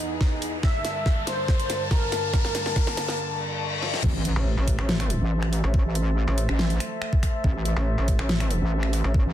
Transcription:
0.00 0.60 E2 medium
0.00 0.60 E3 medium
0.00 0.60 B3 medium
0.00 0.55 D#4 loud
0.00 0.60 G#4 medium
0.00 riser medium
0.21 kick loud
0.21 snare medium
0.42 open hi-hat medium
0.63 4.00 G2 medium
0.63 4.00 D3 medium
0.63 4.00 A#3 medium
0.63 1.19 E5 loud
0.63 4.00 A5 medium
0.63 kick loud
0.63 snare medium
0.85 snare medium
0.85 closed hi-hat medium
1.06 kick loud
1.06 snare medium
1.27 1.83 C5 loud
1.27 snare medium
1.27 closed hi-hat medium
1.48 kick loud
1.48 snare medium
1.60 closed hi-hat soft
1.70 snare medium
1.70 closed hi-hat medium
1.91 3.19 A#4 loud
1.91 kick loud
1.91 snare medium
2.12 snare medium
2.12 open hi-hat medium
2.33 kick loud
2.33 snare medium
2.45 snare medium
2.55 snare medium
2.55 closed hi-hat medium
2.66 snare medium
2.76 kick loud
2.76 snare medium
2.87 snare medium
2.97 snare loud
2.97 closed hi-hat medium
3.08 snare medium
3.19 reverse cymbal medium
3.82 snare medium
3.94 snare medium
4.04 4.34 A1 loud
4.04 9.33 A3 medium
4.04 9.33 A4 medium
4.04 9.33 C5 medium
4.04 9.33 E5 medium
4.04 kick loud
4.04 crash loud
4.04 impact medium
4.25 closed hi-hat medium
4.36 4.56 A1 medium
4.57 4.77 A1 loud
4.68 kick medium
4.68 closed hi-hat medium
4.79 5.19 A1 loud
4.79 finger snap soft
4.89 snare loud
5.00 finger snap soft
5.00 closed hi-hat soft
5.10 closed hi-hat medium
5.21 5.62 A1 loud
5.43 finger snap soft
5.53 open hi-hat medium
5.64 5.83 A1 medium
5.74 kick loud
5.85 6.26 A1 loud
5.95 closed hi-hat medium
6.28 6.47 A1 loud
6.38 closed hi-hat medium
6.49 6.79 A1 medium
6.49 finger snap medium
6.59 snare loud
6.70 closed hi-hat soft
6.80 finger snap soft
6.80 closed hi-hat medium
7.02 finger snap medium
7.13 kick loud
7.23 finger snap soft
7.23 kick medium
7.23 open hi-hat medium
7.44 7.75 A1 loud
7.44 kick loud
7.65 closed hi-hat medium
7.77 7.96 A1 loud
7.98 8.17 A1 loud
8.08 kick medium
8.08 closed hi-hat medium
8.19 8.60 A1 loud
8.19 finger snap medium
8.29 snare loud
8.40 finger snap medium
8.40 closed hi-hat soft
8.51 closed hi-hat medium
8.62 9.02 A1 loud
8.83 finger snap medium
8.93 open hi-hat medium
9.04 9.24 A1 medium
9.14 kick loud
9.26 9.33 A1 loud

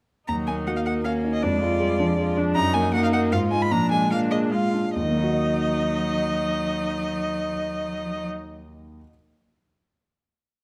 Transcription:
0.28 1.39 D#2 soft
0.28 0.69 F#3 soft
0.28 1.06 D#4 soft
0.28 0.35 A#5 medium
0.47 0.78 A#3 soft
0.47 0.55 G#5 medium
0.67 1.04 A#3 soft
0.67 0.98 F#4 soft
0.67 0.71 F#5 medium
0.76 0.80 F5 medium
0.86 1.17 A#4 soft
0.86 0.93 F#5 medium
1.04 1.44 A#3 soft
1.04 1.44 C#4 soft
1.04 1.36 F#4 soft
1.04 1.12 F5 medium
1.23 1.43 D#4 soft
1.33 1.44 D#5 medium
1.42 2.53 F2 medium
1.42 1.82 G#3 soft
1.42 1.61 D4 soft
1.42 2.37 D5 medium
1.61 1.92 G#3 soft
1.61 2.17 F4 soft
1.80 1.99 G3 soft
1.80 2.10 G#4 soft
1.99 2.18 F3 soft
1.99 2.30 D4 soft
2.18 2.57 F3 soft
2.18 2.39 F4 medium
2.18 2.49 G#4 soft
2.37 2.56 D4 soft
2.37 2.57 D4 medium
2.55 3.30 F#2 medium
2.55 2.93 F#3 medium
2.55 2.93 D#4 medium
2.55 2.75 A#5 medium
2.74 3.05 A#3 soft
2.74 2.93 G#5 medium
2.93 3.34 A#3 medium
2.93 3.33 D#4 medium
2.93 3.24 F#4 soft
2.93 3.03 F#5 medium
3.04 3.08 F5 medium
3.12 3.32 A#4 medium
3.12 3.21 F#5 medium
3.32 3.70 G#2 medium
3.32 3.72 G#3 medium
3.32 3.73 F4 soft
3.32 3.40 F5 medium
3.52 3.69 D#4 soft
3.52 3.69 F4 soft
3.52 3.63 G#5 medium
3.62 3.73 B5 medium
3.70 4.92 A#2 medium
3.70 4.12 F3 soft
3.70 4.10 D4 soft
3.70 3.90 A#5 medium
3.91 4.23 G#3 soft
3.91 4.11 G#5 medium
4.10 4.53 A#3 soft
4.10 4.53 D4 soft
4.10 4.44 F4 soft
4.10 4.19 F5 medium
4.31 4.65 G#4 soft
4.31 4.39 D#5 medium
4.51 4.74 G#3 soft
4.51 4.73 F4 soft
4.51 4.87 F4 soft
4.51 4.94 F5 medium
4.74 4.95 D4 soft
4.95 8.97 D#2 soft
4.95 8.27 F#3 soft
4.95 8.27 D#4 medium
4.95 8.26 D#5 medium
5.03 9.00 D#3 soft
5.10 9.04 A#3 soft
5.17 9.07 D#4 soft
5.24 9.11 F#4 soft
5.31 9.14 D#5 soft

